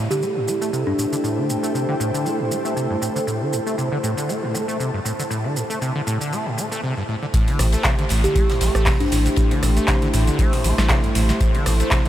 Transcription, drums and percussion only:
0.11 shaker
0.23 ride, shaker
0.36 snare
0.47 snare, ride, shaker
0.62 shaker
0.73 open hi-hat, shaker
0.99 snare, ride, shaker
1.13 shaker
1.23 ride, shaker
1.38 ride
1.50 ride, shaker
1.64 shaker
1.74 ride, shaker
2.00 ride, shaker
2.15 shaker
2.25 ride, shaker
2.39 ride
2.51 ride, shaker
2.65 snare, shaker
2.76 ride, shaker
3.02 ride, shaker
3.15 snare, shaker
3.27 ride, shaker
3.53 ride, shaker
3.67 ride, shaker
3.79 ride, shaker
4.03 ride, shaker
4.18 shaker
4.29 ride, shaker
4.43 snare
4.54 snare, ride, shaker
4.69 shaker
4.80 open hi-hat, shaker
5.04 snare, ride, shaker
5.20 shaker
5.30 ride, shaker
5.44 ride
5.56 ride, shaker
5.70 shaker
5.82 ride, shaker
6.07 ride, shaker
6.21 shaker
6.33 ride, shaker
6.46 ride
6.57 ride, shaker
6.72 snare, shaker
7.34 kick, closed hi-hat, ride, shaker
7.48 closed hi-hat
7.59 cross-stick, open hi-hat, ride, shaker
7.72 closed hi-hat, ride, shaker
7.84 kick, snare, clap, closed hi-hat, ride, shaker
7.99 closed hi-hat
8.09 open hi-hat, ride, shaker
8.24 closed hi-hat, shaker
8.36 kick, closed hi-hat, ride, shaker
8.49 snare, closed hi-hat
8.61 snare, open hi-hat, ride, shaker
8.75 cross-stick, closed hi-hat, shaker
8.86 kick, snare, clap, closed hi-hat, open hi-hat, shaker
9.00 closed hi-hat
9.12 snare, open hi-hat, ride, shaker
9.26 closed hi-hat, shaker
9.36 kick, closed hi-hat, ride, shaker
9.51 closed hi-hat, ride
9.63 cross-stick, open hi-hat, ride, shaker
9.77 closed hi-hat, shaker
9.88 kick, snare, clap, closed hi-hat, ride, shaker
10.02 closed hi-hat
10.14 open hi-hat, ride, shaker
10.27 closed hi-hat, shaker
10.39 kick, closed hi-hat, ride, shaker
10.53 open hi-hat, ride
10.64 open hi-hat, ride, shaker
10.78 cross-stick, snare, closed hi-hat, shaker
10.89 kick, snare, clap, closed hi-hat, ride, shaker
11.04 closed hi-hat
11.15 open hi-hat, ride, shaker
11.29 snare, closed hi-hat, shaker
11.40 kick, closed hi-hat, ride, shaker
11.55 closed hi-hat
11.66 cross-stick, open hi-hat, ride, shaker
11.80 closed hi-hat, ride, shaker
11.91 kick, snare, clap, closed hi-hat, ride, shaker
12.05 closed hi-hat

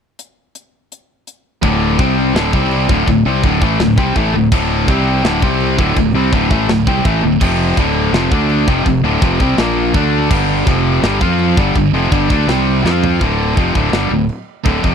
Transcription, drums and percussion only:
0.19 closed hi-hat
0.55 closed hi-hat
0.92 closed hi-hat
1.27 closed hi-hat
1.63 kick, china
1.99 kick, china
2.35 snare, china
2.53 kick
2.71 china
2.89 kick
3.08 kick, china
3.43 kick, china
3.62 kick
3.79 snare, china
3.98 kick
4.16 kick, china
4.52 kick, crash, china
4.88 kick, china
5.24 snare, china
5.42 kick
5.61 china
5.79 kick
5.97 kick, china
6.33 kick, china
6.51 kick
6.69 snare, china
6.87 kick
7.05 kick, china
7.41 kick, china, crash
7.77 kick, china
8.14 snare, china
8.32 kick
8.49 china
8.68 kick
8.86 kick, china
9.22 kick, china
9.40 kick
9.58 snare, china
9.94 kick, china
10.31 kick, china, crash
10.67 kick, china
11.03 snare, china
11.21 kick
11.39 china
11.57 kick
11.75 kick, china
12.12 kick, china
12.30 kick
12.48 snare, china
12.86 snare
13.04 floor tom
13.21 kick, china
13.57 kick, china
13.75 kick
13.93 snare, china
14.29 china
14.66 kick, china
14.84 kick

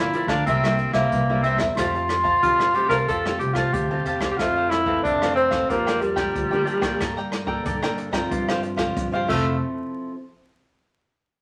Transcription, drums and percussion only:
0.13 closed hi-hat
0.28 kick, cross-stick, closed hi-hat
0.47 kick, closed hi-hat
0.64 cross-stick
0.78 closed hi-hat
0.93 kick, cross-stick, closed hi-hat
1.12 kick, closed hi-hat
1.44 closed hi-hat
1.58 kick, cross-stick, closed hi-hat
1.77 kick, cross-stick, closed hi-hat
1.95 closed hi-hat
2.09 cross-stick, closed hi-hat
2.24 kick, closed hi-hat
2.43 kick, closed hi-hat
2.60 cross-stick
2.74 closed hi-hat
2.90 kick, cross-stick
3.08 kick, closed hi-hat
3.26 cross-stick
3.40 closed hi-hat
3.55 kick, cross-stick, closed hi-hat
3.73 kick, closed hi-hat
4.06 closed hi-hat
4.21 kick, cross-stick
4.39 kick, cross-stick, closed hi-hat
4.71 cross-stick, closed hi-hat
4.86 kick, closed hi-hat
5.05 kick, closed hi-hat
5.22 cross-stick, closed hi-hat
5.37 closed hi-hat
5.51 kick, cross-stick, closed hi-hat
5.70 kick, closed hi-hat
5.87 cross-stick
6.02 closed hi-hat
6.17 kick, cross-stick
6.35 kick, closed hi-hat
6.52 closed hi-hat
6.67 closed hi-hat
6.82 kick, cross-stick
7.01 kick, cross-stick, closed hi-hat
7.17 closed hi-hat
7.32 cross-stick, closed hi-hat
7.47 kick
7.65 kick, closed hi-hat
7.83 cross-stick
7.98 closed hi-hat
8.13 kick, cross-stick, closed hi-hat
8.31 kick, closed hi-hat
8.49 cross-stick
8.63 closed hi-hat
8.78 kick, cross-stick
8.97 kick, closed hi-hat
9.29 kick, crash

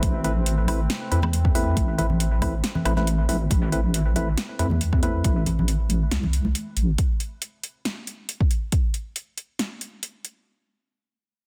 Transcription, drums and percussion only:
0.03 kick, closed hi-hat, high conga
0.24 closed hi-hat
0.46 closed hi-hat
0.68 open hi-hat, high conga, low woodblock
0.90 snare, closed hi-hat
1.12 closed hi-hat
1.23 high conga, low conga, low woodblock
1.33 closed hi-hat
1.45 kick
1.55 open hi-hat
1.77 kick, closed hi-hat, high conga
1.98 closed hi-hat, low conga
2.10 low conga
2.20 closed hi-hat
2.42 kick, open hi-hat, high conga, low woodblock
2.64 snare, closed hi-hat
2.75 low conga
2.85 closed hi-hat, low woodblock
2.97 snare, high conga
3.07 closed hi-hat
3.29 open hi-hat
3.50 kick, closed hi-hat, high conga
3.72 closed hi-hat
3.94 closed hi-hat
4.16 closed hi-hat, high conga
4.38 snare, closed hi-hat
4.59 closed hi-hat
4.70 high conga, low conga
4.81 closed hi-hat
4.93 kick
5.03 closed hi-hat
5.24 kick, closed hi-hat, high conga
5.46 closed hi-hat, low conga
5.59 low conga
5.68 closed hi-hat
5.89 closed hi-hat, high conga
6.11 snare, closed hi-hat
6.23 low conga
6.33 closed hi-hat
6.45 high conga
6.55 closed hi-hat
6.77 closed hi-hat
6.98 kick, closed hi-hat
7.20 closed hi-hat
7.42 closed hi-hat
7.63 closed hi-hat
7.85 snare, closed hi-hat
8.07 closed hi-hat
8.29 closed hi-hat
8.41 kick
8.51 closed hi-hat
8.72 kick, closed hi-hat
8.94 closed hi-hat
9.16 closed hi-hat
9.38 closed hi-hat
9.59 snare, closed hi-hat
9.81 closed hi-hat
10.03 closed hi-hat
10.25 closed hi-hat

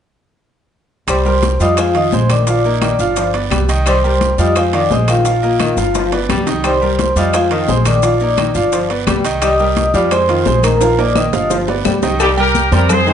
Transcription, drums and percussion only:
1.08 high bongo, high conga, high timbale, long guiro, claves, maracas
1.25 high conga, maracas
1.43 high bongo, high conga, high timbale, short guiro, maracas
1.60 high bongo, high conga, short guiro, maracas
1.77 high bongo, high conga, high timbale, claves, maracas
1.95 high bongo, high conga, high timbale, maracas
2.12 high bongo, low bongo, high conga, short guiro, maracas
2.30 high bongo, high conga, high timbale, short guiro, claves, maracas
2.47 high bongo, high conga, high timbale, long guiro, maracas
2.65 high conga, maracas
2.81 high bongo, high conga, high timbale, short guiro, claves, maracas
2.99 high bongo, high conga, short guiro, maracas
3.16 high bongo, high conga, high timbale, long guiro, maracas
3.34 high bongo, high conga, high timbale, maracas
3.51 high bongo, low bongo, high conga, high timbale, short guiro, claves, maracas
3.69 high bongo, high conga, high timbale, short guiro, maracas
3.86 high bongo, high conga, high timbale, long guiro, claves, maracas
4.04 high conga, maracas
4.21 high bongo, high conga, high timbale, short guiro, maracas
4.38 high bongo, high conga, short guiro, maracas
4.56 high bongo, high conga, high timbale, long guiro, claves, maracas
4.73 high bongo, high conga, high timbale, maracas
4.91 high bongo, low bongo, high conga, short guiro, maracas
5.08 high bongo, high timbale, short guiro, claves, maracas
5.25 high bongo, high conga, high timbale, long guiro, maracas
5.43 high conga, maracas
5.59 high bongo, high conga, high timbale, short guiro, claves, maracas
5.77 high bongo, short guiro, maracas
5.95 high bongo, high conga, high timbale, long guiro, maracas
6.12 high bongo, high conga, high timbale, maracas
6.29 low bongo, high conga, high timbale, short guiro, claves, maracas
6.47 low bongo, high timbale, short guiro, maracas
6.64 high bongo, high conga, high timbale, long guiro, claves, maracas
6.82 high conga, maracas
6.99 high bongo, high conga, high timbale, short guiro, maracas
7.16 high bongo, high conga, short guiro, maracas
7.33 high bongo, high conga, high timbale, long guiro, claves, maracas
7.51 high bongo, high conga, high timbale, maracas
7.68 high bongo, low bongo, high conga, short guiro, maracas
7.85 high bongo, high conga, high timbale, short guiro, claves, maracas
8.03 high bongo, high conga, high timbale, long guiro, maracas
8.20 high conga, maracas
8.37 high bongo, high conga, high timbale, short guiro, claves, maracas
8.55 high bongo, high conga, short guiro, maracas
8.72 high bongo, high conga, high timbale, long guiro, maracas
8.90 high bongo, high conga, high timbale, maracas
9.07 high bongo, low bongo, high conga, high timbale, short guiro, claves, maracas
9.24 high bongo, high conga, high timbale, short guiro, maracas
9.42 high bongo, high conga, high timbale, long guiro, claves, maracas
9.59 high conga, maracas
9.77 high bongo, high conga, high timbale, short guiro, maracas
9.94 high bongo, high conga, short guiro, maracas
10.11 high bongo, high conga, high timbale, long guiro, claves, maracas
10.28 high bongo, high conga, high timbale, maracas
10.46 high bongo, low bongo, high conga, low timbale, short guiro, maracas
10.63 high bongo, high conga, high timbale, short guiro, claves, maracas
10.81 high bongo, high conga, high timbale, long guiro, maracas
10.98 high conga, high timbale, maracas
11.15 high bongo, high conga, high timbale, short guiro, claves, maracas
11.33 high bongo, low timbale, short guiro, maracas
11.50 high bongo, high conga, low timbale, long guiro, maracas
11.68 high bongo, high conga, low timbale, maracas
11.85 low bongo, high conga, low timbale, short guiro, claves, maracas
12.02 low bongo, high conga, low timbale, short guiro, maracas
12.20 cowbell, high conga, low agogo, long guiro, claves, maracas
12.37 high conga, low agogo, maracas
12.55 cowbell, high conga, short guiro, maracas
12.72 cowbell, high conga, low agogo, short guiro, maracas
12.89 cowbell, high conga, low conga, low agogo, long guiro, claves, maracas
13.07 high conga, maracas

